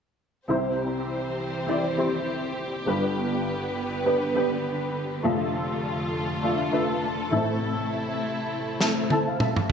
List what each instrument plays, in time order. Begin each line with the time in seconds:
0.48 upright piano C2 C3 C4 E4 G4 C5, string section E3 C4 G4 C5
1.67 upright piano C4 E4 G4 D5
1.97 upright piano C4 E4 G4 C5
2.86 upright piano G1 G2 B3 D4 G4 B4, string section D3 B3 B4
4.04 upright piano B3 D4 G4 B4
4.34 upright piano B3 D4 G4 B4
5.23 upright piano F1 F2 A3 D4 F4 A4, string section F2 A3 F4 A4
6.42 upright piano A3 D4 F4 A4
6.71 upright piano A3 D4 F4 B4
7.30 upright piano A1 A2 A3 C4 E4 A4, string section C3 A3 E4
8.80 upright piano A3 C4 E4 A4, snare
9.10 upright piano A3 C4 E4 A4 A5, high tom
9.27 upright piano F5
9.40 upright piano E5, mid tom
9.56 mid tom